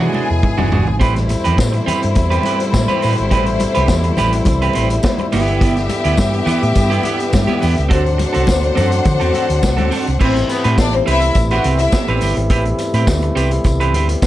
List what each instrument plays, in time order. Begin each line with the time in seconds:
Already playing: french horn section D3 F#3 G#3 B3 E4, string section G#4 G#5
0.00 clean electric guitar G#3 D4 F#4, mid tom
0.13 clean electric guitar G#3 D4 F#4, muted conga
0.29 fingered electric bass E2, muted clean electric guitar stroke
0.43 muted clean electric guitar stroke, kick, mid tom, high conga
0.58 fingered electric bass F#1, clean electric guitar G#3 D4 F#4, floor tom, high conga
0.72 fingered electric bass G1, clean electric guitar G#3 D4 F#4, floor tom
0.86 fingered electric bass G#1, muted clean electric guitar stroke, floor tom
1.00 fingered electric bass A1, french horn section B2 C3 G3 A3 E4, string section G3 E4 C5, clean electric guitar C4 G4 B4, kick, closed hi-hat, tambourine, muted conga
1.16 muted clean electric guitar stroke, snare, closed hi-hat
1.29 muted clean electric guitar stroke, closed hi-hat, tambourine, muted conga
1.44 fingered electric bass E2, clean electric guitar C4 G4 B4, closed hi-hat
1.58 fingered electric bass A2, kick, snare, tambourine, high conga
1.73 muted clean electric guitar stroke, closed hi-hat
1.86 clean electric guitar C4 G4 B4, closed hi-hat, tambourine, low conga
2.02 fingered electric bass G2, muted clean electric guitar stroke, closed hi-hat
2.15 fingered electric bass E2, muted clean electric guitar stroke, kick, closed hi-hat, tambourine, muted conga
2.30 clean electric guitar C4 G4 B4, closed hi-hat
2.43 clean electric guitar C4 G4 B4, closed hi-hat, tambourine, muted conga
2.60 muted clean electric guitar stroke, closed hi-hat
2.73 fingered electric bass A2, muted clean electric guitar stroke, kick, snare, tambourine, high conga
2.88 clean electric guitar C4 G4 B4, closed hi-hat, high conga
3.02 fingered electric bass A2, clean electric guitar C4 G4 B4, open hi-hat, tambourine
3.17 fingered electric bass G#1, muted clean electric guitar stroke, closed hi-hat
3.31 fingered electric bass A1, clean electric guitar C4 G4 B4, kick, closed hi-hat
3.46 muted clean electric guitar stroke, closed hi-hat
3.59 muted clean electric guitar stroke, closed hi-hat, tambourine, muted conga
3.75 fingered electric bass C2, clean electric guitar C4 G4 B4, closed hi-hat
3.88 fingered electric bass E2, kick, snare, tambourine, high conga
4.04 muted clean electric guitar stroke, closed hi-hat
4.17 fingered electric bass A1, clean electric guitar C4 G4 B4, closed hi-hat, tambourine, low conga
4.33 muted clean electric guitar stroke, closed hi-hat
4.45 fingered electric bass C2, muted clean electric guitar stroke, kick, closed hi-hat, tambourine, muted conga, low conga
4.62 clean electric guitar C4 G4 B4, closed hi-hat
4.73 fingered electric bass A1, clean electric guitar C4 G4 B4, closed hi-hat, tambourine, muted conga
4.90 muted clean electric guitar stroke, closed hi-hat
5.03 muted clean electric guitar stroke, kick, snare, tambourine, high conga
5.18 muted clean electric guitar stroke, closed hi-hat, high conga
5.32 fingered electric bass G1, french horn section D3 E3 B3, clean electric guitar B3 E4 G4, string section B3 G4 E5, open hi-hat, tambourine
5.48 clean electric guitar B3 E4 G4, closed hi-hat
5.61 clean electric guitar B3 E4 G4, kick, closed hi-hat, tambourine
5.76 muted clean electric guitar stroke, snare, closed hi-hat
5.89 muted clean electric guitar stroke, closed hi-hat, tambourine, muted conga
6.04 fingered electric bass D2, clean electric guitar B3 E4 G4, closed hi-hat
6.17 fingered electric bass G2, kick, snare, tambourine, high conga
6.33 muted clean electric guitar stroke, closed hi-hat
6.46 clean electric guitar B3 E4 G4, closed hi-hat, tambourine, low conga
6.63 fingered electric bass A2, muted clean electric guitar stroke, closed hi-hat
6.75 fingered electric bass G2, muted clean electric guitar stroke, kick, closed hi-hat, tambourine, muted conga
6.90 clean electric guitar B3 E4 G4, closed hi-hat
7.03 clean electric guitar B3 E4 G4, closed hi-hat, muted conga
7.19 muted clean electric guitar stroke, closed hi-hat
7.33 fingered electric bass G2, muted clean electric guitar stroke, kick, snare, tambourine, high conga
7.47 clean electric guitar B3 E4 G4, closed hi-hat, high conga
7.60 fingered electric bass E2, clean electric guitar B3 E4 G4, open hi-hat, tambourine
7.76 fingered electric bass C#2, muted clean electric guitar stroke, closed hi-hat
7.89 fingered electric bass D2, french horn section F#3 A3 C4 F#4, clean electric guitar C4 F#4 A4, string section D4 C5 F#5, kick, closed hi-hat
8.04 muted clean electric guitar stroke, closed hi-hat
8.18 muted clean electric guitar stroke, closed hi-hat, tambourine, muted conga
8.33 fingered electric bass C2, clean electric guitar C4 F#4 A4, closed hi-hat
8.47 fingered electric bass D2, kick, snare, tambourine, high conga
8.62 muted clean electric guitar stroke, closed hi-hat
8.76 fingered electric bass F#2, clean electric guitar C4 F#4 A4, closed hi-hat, tambourine, low conga
8.91 muted clean electric guitar stroke, closed hi-hat
9.05 fingered electric bass D3, muted clean electric guitar stroke, kick, closed hi-hat, tambourine, muted conga, low conga
9.20 fingered electric bass E2, clean electric guitar C4 F#4 A4, closed hi-hat
9.34 clean electric guitar C4 F#4 A4, closed hi-hat, tambourine, muted conga
9.49 fingered electric bass D2, muted clean electric guitar stroke, closed hi-hat
9.63 fingered electric bass C2, muted clean electric guitar stroke, kick, snare, tambourine, high conga
9.77 fingered electric bass D2, clean electric guitar C4 F#4 A4, closed hi-hat, high conga
9.91 clean electric guitar C4 F#4 A4, open hi-hat, tambourine
10.06 fingered electric bass C2, muted clean electric guitar stroke, closed hi-hat
10.20 fingered electric bass A1, french horn section C3 G3 A3 B3 E4, clean electric guitar C4 G4 B4, string section C4 C5, kick, crash, tambourine
10.35 muted clean electric guitar stroke, snare, closed hi-hat
10.48 string section B3 B4, muted clean electric guitar stroke, closed hi-hat, tambourine
10.64 fingered electric bass A2, clean electric guitar C4 G4 B4, closed hi-hat
10.78 fingered electric bass A1, string section D4 D5, kick, snare, tambourine
10.93 string section C4 C5, muted clean electric guitar stroke, closed hi-hat
11.06 fingered electric bass C2, clean electric guitar C4 G4 B4, string section E4 E5, closed hi-hat, tambourine
11.22 muted clean electric guitar stroke, closed hi-hat
11.35 fingered electric bass A1, muted clean electric guitar stroke, kick, closed hi-hat, tambourine
11.51 clean electric guitar C4 G4 B4, string section F#4 F#5, closed hi-hat
11.64 fingered electric bass C2, clean electric guitar C4 G4 B4, closed hi-hat, tambourine
11.79 string section E4 E5, muted clean electric guitar stroke, closed hi-hat
11.92 muted clean electric guitar stroke, kick, snare, tambourine
12.08 fingered electric bass A1, clean electric guitar C4 G4 B4, closed hi-hat
12.21 fingered electric bass G1, clean electric guitar C4 G4 B4, open hi-hat, tambourine
12.36 fingered electric bass G#1, muted clean electric guitar stroke, closed hi-hat
12.50 fingered electric bass A1, clean electric guitar C4 G4 B4, kick, closed hi-hat
12.65 muted clean electric guitar stroke, closed hi-hat
12.79 muted clean electric guitar stroke, closed hi-hat, tambourine
12.94 fingered electric bass A2, clean electric guitar C4 G4 B4, closed hi-hat
13.07 fingered electric bass D2, kick, snare, tambourine
13.22 muted clean electric guitar stroke, closed hi-hat
13.35 fingered electric bass C2, clean electric guitar C4 G4 B4, closed hi-hat, tambourine
13.51 muted clean electric guitar stroke, closed hi-hat
13.64 fingered electric bass C2, muted clean electric guitar stroke, kick, closed hi-hat, tambourine
13.80 clean electric guitar C4 G4 B4, closed hi-hat
13.93 fingered electric bass D2, clean electric guitar C4 G4 B4, closed hi-hat
14.09 muted clean electric guitar stroke, closed hi-hat
14.22 muted clean electric guitar stroke, kick, snare, tambourine